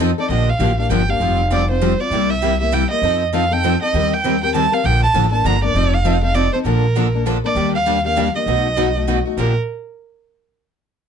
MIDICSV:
0, 0, Header, 1, 5, 480
1, 0, Start_track
1, 0, Key_signature, -2, "major"
1, 0, Tempo, 302572
1, 462, Time_signature, 3, 2, 24, 8
1, 17584, End_track
2, 0, Start_track
2, 0, Title_t, "Violin"
2, 0, Program_c, 0, 40
2, 317, Note_on_c, 0, 74, 86
2, 475, Note_off_c, 0, 74, 0
2, 492, Note_on_c, 0, 75, 85
2, 786, Note_on_c, 0, 77, 83
2, 810, Note_off_c, 0, 75, 0
2, 1248, Note_off_c, 0, 77, 0
2, 1260, Note_on_c, 0, 77, 76
2, 1427, Note_off_c, 0, 77, 0
2, 1465, Note_on_c, 0, 79, 77
2, 1744, Note_on_c, 0, 77, 84
2, 1768, Note_off_c, 0, 79, 0
2, 2209, Note_off_c, 0, 77, 0
2, 2427, Note_on_c, 0, 74, 81
2, 2674, Note_off_c, 0, 74, 0
2, 2712, Note_on_c, 0, 72, 89
2, 3176, Note_on_c, 0, 74, 90
2, 3200, Note_off_c, 0, 72, 0
2, 3648, Note_on_c, 0, 76, 91
2, 3672, Note_off_c, 0, 74, 0
2, 4123, Note_off_c, 0, 76, 0
2, 4134, Note_on_c, 0, 76, 80
2, 4339, Note_on_c, 0, 79, 85
2, 4363, Note_off_c, 0, 76, 0
2, 4602, Note_off_c, 0, 79, 0
2, 4611, Note_on_c, 0, 75, 91
2, 5052, Note_off_c, 0, 75, 0
2, 5294, Note_on_c, 0, 77, 86
2, 5597, Note_on_c, 0, 79, 96
2, 5620, Note_off_c, 0, 77, 0
2, 6058, Note_off_c, 0, 79, 0
2, 6067, Note_on_c, 0, 75, 91
2, 6558, Note_on_c, 0, 79, 86
2, 6582, Note_off_c, 0, 75, 0
2, 7019, Note_off_c, 0, 79, 0
2, 7033, Note_on_c, 0, 79, 91
2, 7199, Note_off_c, 0, 79, 0
2, 7227, Note_on_c, 0, 81, 96
2, 7507, Note_on_c, 0, 77, 92
2, 7531, Note_off_c, 0, 81, 0
2, 7701, Note_on_c, 0, 79, 103
2, 7724, Note_off_c, 0, 77, 0
2, 7972, Note_off_c, 0, 79, 0
2, 7982, Note_on_c, 0, 81, 107
2, 8417, Note_off_c, 0, 81, 0
2, 8446, Note_on_c, 0, 81, 90
2, 8663, Note_on_c, 0, 82, 94
2, 8687, Note_off_c, 0, 81, 0
2, 8933, Note_off_c, 0, 82, 0
2, 8944, Note_on_c, 0, 74, 102
2, 9417, Note_on_c, 0, 77, 95
2, 9441, Note_off_c, 0, 74, 0
2, 9887, Note_off_c, 0, 77, 0
2, 9895, Note_on_c, 0, 77, 95
2, 10068, Note_on_c, 0, 74, 92
2, 10092, Note_off_c, 0, 77, 0
2, 10350, Note_off_c, 0, 74, 0
2, 10359, Note_on_c, 0, 72, 85
2, 10446, Note_off_c, 0, 72, 0
2, 10549, Note_on_c, 0, 70, 78
2, 11445, Note_off_c, 0, 70, 0
2, 11832, Note_on_c, 0, 74, 86
2, 12260, Note_off_c, 0, 74, 0
2, 12292, Note_on_c, 0, 77, 92
2, 12729, Note_off_c, 0, 77, 0
2, 12781, Note_on_c, 0, 77, 94
2, 13214, Note_off_c, 0, 77, 0
2, 13252, Note_on_c, 0, 75, 84
2, 14617, Note_off_c, 0, 75, 0
2, 14882, Note_on_c, 0, 70, 74
2, 15139, Note_off_c, 0, 70, 0
2, 17584, End_track
3, 0, Start_track
3, 0, Title_t, "Steel-string acoustic guitar"
3, 0, Program_c, 1, 25
3, 1925, Note_on_c, 1, 67, 71
3, 2226, Note_off_c, 1, 67, 0
3, 2405, Note_on_c, 1, 67, 90
3, 2566, Note_off_c, 1, 67, 0
3, 2889, Note_on_c, 1, 67, 94
3, 3050, Note_off_c, 1, 67, 0
3, 13458, Note_on_c, 1, 71, 63
3, 13752, Note_off_c, 1, 71, 0
3, 13927, Note_on_c, 1, 71, 89
3, 14087, Note_off_c, 1, 71, 0
3, 14413, Note_on_c, 1, 71, 88
3, 14569, Note_off_c, 1, 71, 0
3, 17584, End_track
4, 0, Start_track
4, 0, Title_t, "Steel-string acoustic guitar"
4, 0, Program_c, 2, 25
4, 0, Note_on_c, 2, 53, 81
4, 9, Note_on_c, 2, 60, 93
4, 11, Note_on_c, 2, 63, 99
4, 13, Note_on_c, 2, 69, 102
4, 159, Note_off_c, 2, 53, 0
4, 165, Note_off_c, 2, 60, 0
4, 166, Note_off_c, 2, 63, 0
4, 168, Note_off_c, 2, 69, 0
4, 286, Note_on_c, 2, 69, 62
4, 296, Note_on_c, 2, 63, 57
4, 305, Note_on_c, 2, 60, 47
4, 464, Note_off_c, 2, 69, 0
4, 469, Note_off_c, 2, 63, 0
4, 469, Note_on_c, 2, 50, 62
4, 470, Note_off_c, 2, 60, 0
4, 472, Note_on_c, 2, 53, 64
4, 477, Note_on_c, 2, 58, 66
4, 480, Note_on_c, 2, 62, 65
4, 490, Note_on_c, 2, 67, 64
4, 776, Note_off_c, 2, 50, 0
4, 777, Note_off_c, 2, 53, 0
4, 780, Note_off_c, 2, 58, 0
4, 781, Note_off_c, 2, 62, 0
4, 787, Note_off_c, 2, 67, 0
4, 955, Note_on_c, 2, 50, 69
4, 958, Note_on_c, 2, 53, 77
4, 966, Note_on_c, 2, 62, 81
4, 969, Note_on_c, 2, 58, 76
4, 971, Note_on_c, 2, 67, 77
4, 1120, Note_off_c, 2, 50, 0
4, 1121, Note_off_c, 2, 53, 0
4, 1125, Note_off_c, 2, 62, 0
4, 1127, Note_off_c, 2, 58, 0
4, 1127, Note_off_c, 2, 67, 0
4, 1245, Note_on_c, 2, 67, 52
4, 1259, Note_on_c, 2, 62, 48
4, 1275, Note_on_c, 2, 58, 44
4, 1424, Note_off_c, 2, 67, 0
4, 1426, Note_off_c, 2, 58, 0
4, 1432, Note_off_c, 2, 62, 0
4, 1439, Note_on_c, 2, 50, 75
4, 1445, Note_on_c, 2, 58, 78
4, 1450, Note_on_c, 2, 53, 82
4, 1453, Note_on_c, 2, 67, 96
4, 1455, Note_on_c, 2, 62, 85
4, 1602, Note_off_c, 2, 50, 0
4, 1605, Note_off_c, 2, 58, 0
4, 1607, Note_off_c, 2, 53, 0
4, 1609, Note_off_c, 2, 67, 0
4, 1610, Note_off_c, 2, 62, 0
4, 1727, Note_on_c, 2, 67, 57
4, 1740, Note_on_c, 2, 62, 49
4, 1754, Note_on_c, 2, 58, 47
4, 1906, Note_off_c, 2, 67, 0
4, 1913, Note_off_c, 2, 62, 0
4, 1920, Note_off_c, 2, 58, 0
4, 1922, Note_on_c, 2, 53, 64
4, 1931, Note_on_c, 2, 55, 65
4, 1940, Note_on_c, 2, 60, 68
4, 1942, Note_on_c, 2, 65, 62
4, 1945, Note_on_c, 2, 72, 65
4, 2225, Note_off_c, 2, 53, 0
4, 2229, Note_off_c, 2, 55, 0
4, 2234, Note_off_c, 2, 60, 0
4, 2235, Note_off_c, 2, 65, 0
4, 2236, Note_off_c, 2, 72, 0
4, 2398, Note_on_c, 2, 53, 72
4, 2411, Note_on_c, 2, 55, 69
4, 2414, Note_on_c, 2, 65, 76
4, 2415, Note_on_c, 2, 60, 76
4, 2421, Note_on_c, 2, 72, 73
4, 2563, Note_off_c, 2, 53, 0
4, 2570, Note_off_c, 2, 55, 0
4, 2571, Note_off_c, 2, 65, 0
4, 2572, Note_off_c, 2, 60, 0
4, 2575, Note_off_c, 2, 72, 0
4, 2686, Note_on_c, 2, 72, 54
4, 2700, Note_on_c, 2, 65, 45
4, 2713, Note_on_c, 2, 60, 46
4, 2867, Note_off_c, 2, 72, 0
4, 2874, Note_off_c, 2, 65, 0
4, 2875, Note_off_c, 2, 60, 0
4, 2883, Note_on_c, 2, 53, 78
4, 2886, Note_on_c, 2, 55, 74
4, 2894, Note_on_c, 2, 60, 84
4, 2895, Note_on_c, 2, 72, 82
4, 2896, Note_on_c, 2, 65, 83
4, 3047, Note_off_c, 2, 53, 0
4, 3048, Note_off_c, 2, 55, 0
4, 3052, Note_off_c, 2, 60, 0
4, 3052, Note_off_c, 2, 72, 0
4, 3053, Note_off_c, 2, 65, 0
4, 3175, Note_on_c, 2, 72, 57
4, 3189, Note_on_c, 2, 65, 55
4, 3201, Note_on_c, 2, 60, 46
4, 3352, Note_off_c, 2, 72, 0
4, 3359, Note_off_c, 2, 65, 0
4, 3365, Note_off_c, 2, 60, 0
4, 3378, Note_on_c, 2, 48, 66
4, 3385, Note_on_c, 2, 55, 65
4, 3389, Note_on_c, 2, 64, 72
4, 3392, Note_on_c, 2, 58, 64
4, 3398, Note_on_c, 2, 67, 70
4, 3675, Note_off_c, 2, 48, 0
4, 3678, Note_off_c, 2, 55, 0
4, 3680, Note_off_c, 2, 64, 0
4, 3682, Note_off_c, 2, 58, 0
4, 3685, Note_off_c, 2, 67, 0
4, 3858, Note_on_c, 2, 48, 71
4, 3865, Note_on_c, 2, 55, 69
4, 3867, Note_on_c, 2, 58, 78
4, 3870, Note_on_c, 2, 64, 80
4, 3874, Note_on_c, 2, 67, 85
4, 4015, Note_off_c, 2, 48, 0
4, 4019, Note_off_c, 2, 55, 0
4, 4020, Note_off_c, 2, 58, 0
4, 4021, Note_off_c, 2, 64, 0
4, 4023, Note_off_c, 2, 67, 0
4, 4138, Note_on_c, 2, 67, 52
4, 4150, Note_on_c, 2, 64, 51
4, 4166, Note_on_c, 2, 58, 47
4, 4310, Note_off_c, 2, 58, 0
4, 4313, Note_off_c, 2, 64, 0
4, 4315, Note_off_c, 2, 67, 0
4, 4322, Note_on_c, 2, 48, 78
4, 4322, Note_on_c, 2, 55, 75
4, 4329, Note_on_c, 2, 58, 83
4, 4332, Note_on_c, 2, 64, 81
4, 4337, Note_on_c, 2, 67, 92
4, 4487, Note_off_c, 2, 48, 0
4, 4488, Note_off_c, 2, 55, 0
4, 4491, Note_off_c, 2, 58, 0
4, 4493, Note_off_c, 2, 64, 0
4, 4495, Note_off_c, 2, 67, 0
4, 4610, Note_on_c, 2, 67, 52
4, 4624, Note_on_c, 2, 64, 48
4, 4634, Note_on_c, 2, 58, 42
4, 4791, Note_off_c, 2, 67, 0
4, 4798, Note_off_c, 2, 64, 0
4, 4803, Note_off_c, 2, 58, 0
4, 4809, Note_on_c, 2, 53, 65
4, 4812, Note_on_c, 2, 60, 70
4, 4824, Note_on_c, 2, 63, 66
4, 4825, Note_on_c, 2, 69, 71
4, 5112, Note_off_c, 2, 53, 0
4, 5113, Note_off_c, 2, 60, 0
4, 5119, Note_off_c, 2, 63, 0
4, 5119, Note_off_c, 2, 69, 0
4, 5277, Note_on_c, 2, 53, 73
4, 5286, Note_on_c, 2, 60, 83
4, 5291, Note_on_c, 2, 63, 83
4, 5298, Note_on_c, 2, 69, 83
4, 5446, Note_off_c, 2, 53, 0
4, 5450, Note_off_c, 2, 60, 0
4, 5453, Note_off_c, 2, 63, 0
4, 5456, Note_off_c, 2, 69, 0
4, 5573, Note_on_c, 2, 69, 56
4, 5593, Note_on_c, 2, 63, 48
4, 5599, Note_on_c, 2, 60, 39
4, 5753, Note_off_c, 2, 69, 0
4, 5763, Note_off_c, 2, 63, 0
4, 5766, Note_off_c, 2, 60, 0
4, 5779, Note_on_c, 2, 53, 78
4, 5788, Note_on_c, 2, 60, 81
4, 5793, Note_on_c, 2, 63, 85
4, 5794, Note_on_c, 2, 69, 87
4, 5937, Note_off_c, 2, 53, 0
4, 5941, Note_off_c, 2, 60, 0
4, 5944, Note_off_c, 2, 63, 0
4, 5944, Note_off_c, 2, 69, 0
4, 6063, Note_on_c, 2, 69, 50
4, 6073, Note_on_c, 2, 63, 50
4, 6088, Note_on_c, 2, 60, 43
4, 6239, Note_off_c, 2, 69, 0
4, 6240, Note_off_c, 2, 60, 0
4, 6243, Note_off_c, 2, 63, 0
4, 6255, Note_on_c, 2, 51, 63
4, 6259, Note_on_c, 2, 60, 61
4, 6260, Note_on_c, 2, 55, 68
4, 6265, Note_on_c, 2, 67, 71
4, 6278, Note_on_c, 2, 70, 70
4, 6555, Note_off_c, 2, 51, 0
4, 6557, Note_off_c, 2, 55, 0
4, 6557, Note_off_c, 2, 60, 0
4, 6560, Note_off_c, 2, 67, 0
4, 6566, Note_off_c, 2, 70, 0
4, 6733, Note_on_c, 2, 51, 73
4, 6742, Note_on_c, 2, 55, 71
4, 6743, Note_on_c, 2, 60, 83
4, 6747, Note_on_c, 2, 67, 84
4, 6749, Note_on_c, 2, 70, 80
4, 6894, Note_off_c, 2, 51, 0
4, 6899, Note_off_c, 2, 55, 0
4, 6899, Note_off_c, 2, 60, 0
4, 6901, Note_off_c, 2, 67, 0
4, 6902, Note_off_c, 2, 70, 0
4, 7030, Note_on_c, 2, 70, 53
4, 7034, Note_on_c, 2, 67, 49
4, 7051, Note_on_c, 2, 60, 47
4, 7199, Note_off_c, 2, 60, 0
4, 7202, Note_off_c, 2, 70, 0
4, 7204, Note_off_c, 2, 67, 0
4, 7211, Note_on_c, 2, 51, 78
4, 7214, Note_on_c, 2, 55, 74
4, 7218, Note_on_c, 2, 60, 79
4, 7226, Note_on_c, 2, 67, 88
4, 7228, Note_on_c, 2, 70, 84
4, 7373, Note_off_c, 2, 51, 0
4, 7374, Note_off_c, 2, 55, 0
4, 7377, Note_off_c, 2, 60, 0
4, 7380, Note_off_c, 2, 67, 0
4, 7382, Note_off_c, 2, 70, 0
4, 7489, Note_on_c, 2, 70, 55
4, 7500, Note_on_c, 2, 67, 51
4, 7512, Note_on_c, 2, 60, 41
4, 7671, Note_off_c, 2, 70, 0
4, 7672, Note_on_c, 2, 53, 64
4, 7676, Note_off_c, 2, 60, 0
4, 7677, Note_off_c, 2, 67, 0
4, 7677, Note_on_c, 2, 50, 70
4, 7683, Note_on_c, 2, 58, 68
4, 7684, Note_on_c, 2, 62, 69
4, 7686, Note_on_c, 2, 69, 73
4, 7983, Note_off_c, 2, 53, 0
4, 7985, Note_off_c, 2, 50, 0
4, 7988, Note_off_c, 2, 58, 0
4, 7989, Note_off_c, 2, 62, 0
4, 7990, Note_off_c, 2, 69, 0
4, 8156, Note_on_c, 2, 50, 79
4, 8164, Note_on_c, 2, 53, 75
4, 8164, Note_on_c, 2, 58, 82
4, 8168, Note_on_c, 2, 62, 83
4, 8177, Note_on_c, 2, 69, 87
4, 8325, Note_off_c, 2, 50, 0
4, 8329, Note_off_c, 2, 53, 0
4, 8329, Note_off_c, 2, 58, 0
4, 8331, Note_off_c, 2, 62, 0
4, 8336, Note_off_c, 2, 69, 0
4, 8423, Note_on_c, 2, 69, 58
4, 8437, Note_on_c, 2, 62, 51
4, 8453, Note_on_c, 2, 58, 44
4, 8618, Note_off_c, 2, 69, 0
4, 8625, Note_off_c, 2, 58, 0
4, 8625, Note_off_c, 2, 62, 0
4, 8633, Note_on_c, 2, 50, 83
4, 8641, Note_on_c, 2, 53, 82
4, 8644, Note_on_c, 2, 58, 81
4, 8651, Note_on_c, 2, 62, 90
4, 8652, Note_on_c, 2, 69, 91
4, 8803, Note_off_c, 2, 50, 0
4, 8807, Note_off_c, 2, 53, 0
4, 8809, Note_off_c, 2, 58, 0
4, 8813, Note_off_c, 2, 62, 0
4, 8813, Note_off_c, 2, 69, 0
4, 8915, Note_on_c, 2, 69, 60
4, 8936, Note_on_c, 2, 62, 56
4, 8945, Note_on_c, 2, 58, 45
4, 9104, Note_off_c, 2, 69, 0
4, 9107, Note_off_c, 2, 58, 0
4, 9114, Note_off_c, 2, 62, 0
4, 9114, Note_on_c, 2, 60, 64
4, 9115, Note_on_c, 2, 53, 64
4, 9124, Note_on_c, 2, 63, 67
4, 9127, Note_on_c, 2, 69, 67
4, 9423, Note_off_c, 2, 60, 0
4, 9424, Note_off_c, 2, 53, 0
4, 9428, Note_off_c, 2, 63, 0
4, 9430, Note_off_c, 2, 69, 0
4, 9586, Note_on_c, 2, 53, 74
4, 9597, Note_on_c, 2, 60, 80
4, 9602, Note_on_c, 2, 63, 80
4, 9606, Note_on_c, 2, 69, 82
4, 9759, Note_off_c, 2, 53, 0
4, 9765, Note_off_c, 2, 60, 0
4, 9767, Note_off_c, 2, 63, 0
4, 9769, Note_off_c, 2, 69, 0
4, 9873, Note_on_c, 2, 69, 56
4, 9889, Note_on_c, 2, 63, 47
4, 9897, Note_on_c, 2, 60, 44
4, 10055, Note_off_c, 2, 60, 0
4, 10059, Note_off_c, 2, 69, 0
4, 10061, Note_off_c, 2, 63, 0
4, 10062, Note_on_c, 2, 53, 81
4, 10074, Note_on_c, 2, 60, 90
4, 10078, Note_on_c, 2, 69, 88
4, 10080, Note_on_c, 2, 63, 83
4, 10237, Note_off_c, 2, 53, 0
4, 10243, Note_off_c, 2, 60, 0
4, 10244, Note_off_c, 2, 69, 0
4, 10246, Note_off_c, 2, 63, 0
4, 10362, Note_on_c, 2, 69, 56
4, 10381, Note_on_c, 2, 63, 52
4, 10393, Note_on_c, 2, 60, 46
4, 10546, Note_off_c, 2, 69, 0
4, 10555, Note_off_c, 2, 63, 0
4, 10556, Note_on_c, 2, 50, 64
4, 10558, Note_off_c, 2, 60, 0
4, 10561, Note_on_c, 2, 53, 66
4, 10564, Note_on_c, 2, 58, 66
4, 10568, Note_on_c, 2, 69, 74
4, 10570, Note_on_c, 2, 62, 66
4, 10863, Note_off_c, 2, 50, 0
4, 10865, Note_off_c, 2, 53, 0
4, 10867, Note_off_c, 2, 58, 0
4, 10869, Note_off_c, 2, 69, 0
4, 10870, Note_off_c, 2, 62, 0
4, 11046, Note_on_c, 2, 50, 70
4, 11050, Note_on_c, 2, 58, 77
4, 11051, Note_on_c, 2, 53, 70
4, 11054, Note_on_c, 2, 62, 80
4, 11062, Note_on_c, 2, 69, 77
4, 11208, Note_off_c, 2, 50, 0
4, 11210, Note_off_c, 2, 53, 0
4, 11210, Note_off_c, 2, 58, 0
4, 11212, Note_off_c, 2, 62, 0
4, 11216, Note_off_c, 2, 69, 0
4, 11329, Note_on_c, 2, 69, 50
4, 11344, Note_on_c, 2, 62, 43
4, 11361, Note_on_c, 2, 58, 45
4, 11501, Note_off_c, 2, 58, 0
4, 11505, Note_off_c, 2, 62, 0
4, 11509, Note_off_c, 2, 69, 0
4, 11510, Note_on_c, 2, 50, 83
4, 11520, Note_on_c, 2, 58, 87
4, 11521, Note_on_c, 2, 53, 76
4, 11524, Note_on_c, 2, 62, 86
4, 11530, Note_on_c, 2, 69, 89
4, 11679, Note_off_c, 2, 50, 0
4, 11685, Note_off_c, 2, 53, 0
4, 11685, Note_off_c, 2, 58, 0
4, 11687, Note_off_c, 2, 62, 0
4, 11689, Note_off_c, 2, 69, 0
4, 11801, Note_on_c, 2, 69, 56
4, 11814, Note_on_c, 2, 62, 49
4, 11830, Note_on_c, 2, 58, 49
4, 11984, Note_off_c, 2, 69, 0
4, 11991, Note_off_c, 2, 62, 0
4, 11992, Note_off_c, 2, 58, 0
4, 12007, Note_on_c, 2, 51, 63
4, 12010, Note_on_c, 2, 55, 67
4, 12011, Note_on_c, 2, 58, 65
4, 12017, Note_on_c, 2, 62, 65
4, 12017, Note_on_c, 2, 67, 64
4, 12307, Note_off_c, 2, 51, 0
4, 12309, Note_off_c, 2, 55, 0
4, 12310, Note_off_c, 2, 58, 0
4, 12312, Note_off_c, 2, 62, 0
4, 12312, Note_off_c, 2, 67, 0
4, 12474, Note_on_c, 2, 51, 72
4, 12480, Note_on_c, 2, 55, 65
4, 12489, Note_on_c, 2, 58, 77
4, 12493, Note_on_c, 2, 67, 81
4, 12494, Note_on_c, 2, 62, 81
4, 12641, Note_off_c, 2, 51, 0
4, 12644, Note_off_c, 2, 55, 0
4, 12648, Note_off_c, 2, 58, 0
4, 12650, Note_off_c, 2, 67, 0
4, 12651, Note_off_c, 2, 62, 0
4, 12770, Note_on_c, 2, 67, 51
4, 12780, Note_on_c, 2, 62, 46
4, 12795, Note_on_c, 2, 58, 43
4, 12944, Note_off_c, 2, 62, 0
4, 12948, Note_off_c, 2, 58, 0
4, 12948, Note_off_c, 2, 67, 0
4, 12955, Note_on_c, 2, 51, 80
4, 12961, Note_on_c, 2, 55, 74
4, 12963, Note_on_c, 2, 62, 80
4, 12967, Note_on_c, 2, 58, 71
4, 12969, Note_on_c, 2, 67, 80
4, 13121, Note_off_c, 2, 51, 0
4, 13124, Note_off_c, 2, 55, 0
4, 13125, Note_off_c, 2, 62, 0
4, 13127, Note_off_c, 2, 58, 0
4, 13128, Note_off_c, 2, 67, 0
4, 13240, Note_on_c, 2, 67, 55
4, 13261, Note_on_c, 2, 62, 50
4, 13271, Note_on_c, 2, 58, 43
4, 13423, Note_off_c, 2, 67, 0
4, 13433, Note_off_c, 2, 62, 0
4, 13438, Note_off_c, 2, 58, 0
4, 13438, Note_on_c, 2, 47, 66
4, 13443, Note_on_c, 2, 54, 64
4, 13449, Note_on_c, 2, 57, 59
4, 13450, Note_on_c, 2, 63, 71
4, 13460, Note_on_c, 2, 66, 68
4, 13742, Note_off_c, 2, 47, 0
4, 13744, Note_off_c, 2, 54, 0
4, 13747, Note_off_c, 2, 57, 0
4, 13748, Note_off_c, 2, 63, 0
4, 13753, Note_off_c, 2, 66, 0
4, 13910, Note_on_c, 2, 47, 76
4, 13921, Note_on_c, 2, 54, 70
4, 13925, Note_on_c, 2, 57, 79
4, 13926, Note_on_c, 2, 63, 78
4, 13929, Note_on_c, 2, 66, 77
4, 14078, Note_off_c, 2, 47, 0
4, 14084, Note_off_c, 2, 54, 0
4, 14085, Note_off_c, 2, 57, 0
4, 14086, Note_off_c, 2, 63, 0
4, 14087, Note_off_c, 2, 66, 0
4, 14201, Note_on_c, 2, 66, 46
4, 14216, Note_on_c, 2, 63, 43
4, 14227, Note_on_c, 2, 57, 38
4, 14380, Note_off_c, 2, 57, 0
4, 14383, Note_off_c, 2, 66, 0
4, 14384, Note_off_c, 2, 63, 0
4, 14398, Note_on_c, 2, 47, 78
4, 14399, Note_on_c, 2, 57, 80
4, 14401, Note_on_c, 2, 54, 78
4, 14403, Note_on_c, 2, 63, 81
4, 14411, Note_on_c, 2, 66, 81
4, 14562, Note_off_c, 2, 47, 0
4, 14562, Note_off_c, 2, 57, 0
4, 14563, Note_off_c, 2, 54, 0
4, 14565, Note_off_c, 2, 63, 0
4, 14568, Note_off_c, 2, 66, 0
4, 14679, Note_on_c, 2, 66, 47
4, 14702, Note_on_c, 2, 63, 49
4, 14706, Note_on_c, 2, 57, 41
4, 14862, Note_off_c, 2, 66, 0
4, 14873, Note_off_c, 2, 63, 0
4, 14874, Note_on_c, 2, 46, 75
4, 14875, Note_off_c, 2, 57, 0
4, 14883, Note_on_c, 2, 53, 77
4, 14884, Note_on_c, 2, 50, 73
4, 14886, Note_on_c, 2, 58, 72
4, 14895, Note_on_c, 2, 62, 81
4, 14898, Note_on_c, 2, 67, 75
4, 15097, Note_off_c, 2, 46, 0
4, 15102, Note_off_c, 2, 50, 0
4, 15102, Note_off_c, 2, 53, 0
4, 15104, Note_off_c, 2, 58, 0
4, 15108, Note_off_c, 2, 62, 0
4, 15109, Note_off_c, 2, 67, 0
4, 17584, End_track
5, 0, Start_track
5, 0, Title_t, "Upright bass"
5, 0, Program_c, 3, 32
5, 0, Note_on_c, 3, 41, 93
5, 176, Note_off_c, 3, 41, 0
5, 461, Note_on_c, 3, 34, 79
5, 846, Note_off_c, 3, 34, 0
5, 938, Note_on_c, 3, 33, 76
5, 1349, Note_off_c, 3, 33, 0
5, 1423, Note_on_c, 3, 31, 77
5, 1833, Note_off_c, 3, 31, 0
5, 1899, Note_on_c, 3, 29, 82
5, 3057, Note_off_c, 3, 29, 0
5, 3338, Note_on_c, 3, 36, 85
5, 4497, Note_off_c, 3, 36, 0
5, 4787, Note_on_c, 3, 41, 88
5, 5943, Note_off_c, 3, 41, 0
5, 6238, Note_on_c, 3, 39, 79
5, 7388, Note_off_c, 3, 39, 0
5, 7681, Note_on_c, 3, 34, 89
5, 8062, Note_off_c, 3, 34, 0
5, 8152, Note_on_c, 3, 33, 78
5, 8560, Note_off_c, 3, 33, 0
5, 8630, Note_on_c, 3, 31, 85
5, 9039, Note_off_c, 3, 31, 0
5, 9109, Note_on_c, 3, 29, 89
5, 10261, Note_off_c, 3, 29, 0
5, 10543, Note_on_c, 3, 34, 81
5, 11696, Note_off_c, 3, 34, 0
5, 11978, Note_on_c, 3, 39, 78
5, 13132, Note_off_c, 3, 39, 0
5, 13425, Note_on_c, 3, 35, 82
5, 14576, Note_off_c, 3, 35, 0
5, 14863, Note_on_c, 3, 34, 79
5, 15129, Note_off_c, 3, 34, 0
5, 17584, End_track
0, 0, End_of_file